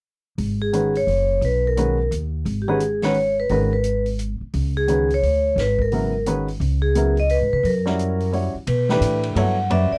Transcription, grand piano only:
0.73 D#3 G#3 C#4 F#4 B4
1.77 D#3 G#3 C#4 F#4 B4
2.68 D#3 G#3 C#4 F#4 B4
3.03 D#3 G#3 C#4 F#4 B4
3.50 D#3 G#3 C#4 F#4 B4
4.88 D#3 G#3 C#4 F#4 B4
5.92 C#3 F#3 B3 E4 A#4
6.27 D#3 G#3 C#4 F#4 B4
6.95 C#3 F#3 B3 E4 A#4
7.86 G3 C#4 E4 F#4 A#4
8.33 G3 C#4 E4 F#4 C#5
8.89 E3 A3 D4 G4 B4
9.36 F#3 B3 E4 A4 C#5
9.70 G3 C#4 F#4 B4 D5

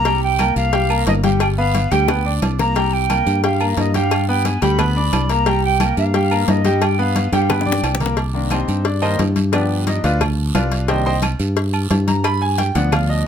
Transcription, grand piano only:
0.06 G3 G4 G5
0.40 A#3 A#4 A#5
0.73 G3 G4 G5
0.90 A#3 A#4 A#5
1.24 G3 G4 G5
1.58 B3 B4 B5
1.92 G3 G4 G5
2.09 B3 B4 B5
2.26 D4 D5 D6
2.59 A#3 A#4 A#5
2.76 G3 G4 G5
3.10 A#3 A#4 A#5
3.44 G3 G4 G5
3.61 A#3 A#4 A#5
3.95 G3 G4 G5
4.29 B3 B4 B5
4.62 G3 G4 G5
4.79 B3 B4 B5
4.96 D4 D5 D6
5.30 A#3 A#4 A#5
5.46 G3 G4 G5
5.80 A#3 A#4 A#5
6.15 G3 G4 G5
6.31 A#3 A#4 A#5
6.65 G3 G4 G5
6.99 B3 B4 B5
7.33 G3 G4 G5
7.50 B3 B4 B5
7.66 D4 D5 D6
8.00 A#3 A#4 A#5
8.34 D#3 A#3 D4
8.52 C4 D#4 G4 C5
8.85 D4 D5
9.02 D#3 A#3 D4 D#4 A#4 C5 D#5
9.52 F3 B3 D4 G4 B4 D5
9.87 D#4 D#5
10.04 F4 B4 D5 F5
10.55 F4 B4 D5 F5
10.88 D#3 A#3 D4 G4 C5 D#5 G5
11.06 C5 D#5 G5 C6
12.08 A#5
12.25 B5
12.42 G#5
12.58 G5
12.75 F3 B3 D4 F#5
12.93 F5
13.09 D#5

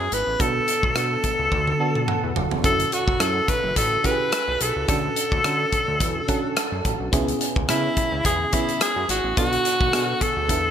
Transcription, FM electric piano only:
Already playing: B3 C#4 E4 G#4
0.39 B3 D4 F#4 A4
0.95 B3 D4 F#4 A4
1.80 B3 D4 F#4 A4 A5
2.08 F#5
2.63 C#4 E4 F#4 A4
3.19 C#4 E4 F#4 A4
4.04 C#4 E4 F#4 G4
4.11 G#4
4.88 C#4 D4 F#4 A4
5.44 C#4 D4 F#4 A4
6.28 C#4 D4 F#4 A4 F#5
6.57 A5
7.12 B3 C#4 E4 G#4
7.68 B3 C#4 E4 G#4
8.52 B3 C#4 E4 G#4
9.37 B3 D4 F#4 A4
9.92 B3 D4 F#4 G#4
10.48 B3 D4 E4 A4

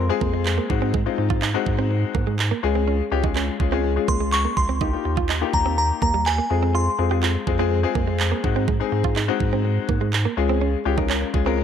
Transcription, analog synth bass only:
Already playing: F2
0.21 F2
0.70 G#2
1.18 G#2
1.66 G#2
2.15 G#2
2.63 C#2
3.12 C#2
3.60 C#2
4.08 C#2
4.57 C#2
5.05 D#2
5.53 D#2
6.02 D#2
6.50 F2
6.99 F2
7.47 F2
7.95 F2
8.44 G#2
8.92 G#2
9.40 G#2
9.89 G#2
10.37 C#2
10.86 C#2
11.34 C#2

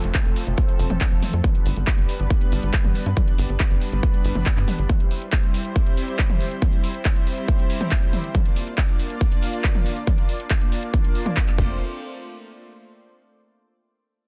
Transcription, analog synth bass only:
0.04 F1
0.26 F1
0.47 F1
0.79 F1
0.90 F1
1.12 F1
1.33 F2
1.66 G1
1.76 G1
1.98 G1
2.20 G1
2.52 G1
2.63 G1
2.84 G1
3.06 G2
3.38 G1
3.49 G1
3.71 G1
3.92 G1
4.25 G1
4.35 G1
4.57 G2
4.79 G1
11.58 F1

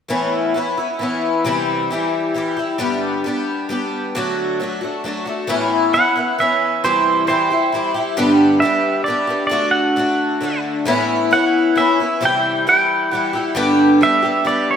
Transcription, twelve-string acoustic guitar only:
0.08 A2 E3 B3 C#4 E4
0.54 E3 B3 C#4 E4
0.77 B3 C#4 E4
0.99 E3 B3 C#4 E4
1.45 C3 E3 G3 E4 G4
1.90 E3 G3 E4 G4
2.34 E3 G3 E4 G4
2.57 G3 E4 G4
2.78 G2 D3 G3 B3 D4 G4
3.24 G3 B3 D4 G4
3.69 G3 B3 D4 G4
4.15 D3 F#3 A3 D4 F#4
4.60 F#3 A3 D4 F#4
4.81 A3 D4 F#4
5.04 F#3 A3 D4 F#4
5.26 A3 D4 F#4
5.47 A2 E3 B3 C#4 E4
5.93 E3 B3 C#4 E4
6.16 B3 C#4 E4
6.39 E3 B3 C#4 E4
6.84 C3 E3 G3 E4 G4
7.27 E3 G3 E4 G4
7.50 G3 E4 G4
7.72 E3 G3 E4 G4
7.94 G3 E4 G4
8.17 G2 D3 G3 B3 D4 G4
8.62 G3 B3 D4 G4
9.06 G3 B3 D4 G4
9.27 G3 B3 D4 G4
9.49 D3 A3 D4 F#4
9.96 D3 A3 D4 F#4
10.41 D3 A3 D4 F#4
10.85 A2 E3 B3 C#4 E4
11.31 E3 B3 C#4 E4
11.75 E3 B3 C#4 E4
12.00 B3 C#4 E4
12.21 C3 E3 G3 E4 G4
12.67 E3 G3 E4 G4
13.11 E3 G3 E4 G4
13.33 G3 E4 G4
13.55 G2 D3 G3 B3 D4 G4
14.01 G3 B3 D4 G4
14.22 G3 B3 D4 G4
14.45 G3 B3 D4
14.49 G4

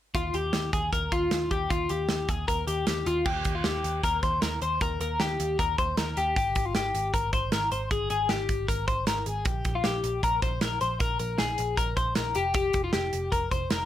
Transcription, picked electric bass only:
0.15 D#2
0.34 D#2
0.54 D#2
0.73 D#2
0.93 D#2
1.12 D#2
1.32 D#2
1.51 D#2
1.71 D#2
1.90 D#2
2.09 D#2
2.29 D#2
2.48 D#2
2.67 D#2
2.87 D#2
3.06 D#2
3.26 D#2
3.46 D#2
3.65 D#2
3.84 D#2
4.04 D#2
4.23 D#2
4.42 D#2
4.62 D#2
4.81 D#2
5.00 D#2
5.20 D#2
5.40 D#2
5.59 D#2
5.78 D#2
5.98 D#2
6.17 D#2
6.36 G#1
6.56 G#1
6.75 G#1
6.94 G#1
7.14 G#1
7.33 G#1
7.53 G#1
7.72 G#1
7.91 G#1
8.10 G#1
8.30 G#1
8.49 G#1
8.69 G#1
8.88 G#1
9.07 G#1
9.26 G#1
9.46 A#1
9.65 A#1
9.85 A#1
10.04 A#1
10.23 A#1
10.43 A#1
10.62 A#1
10.81 A#1
11.01 A#1
11.20 A#1
11.39 A#1
11.59 A#1
11.78 A#1
11.97 A#1
12.17 A#1
12.36 F1
12.74 F1
12.94 F1
13.13 F1
13.32 F1
13.52 F1
13.71 F1

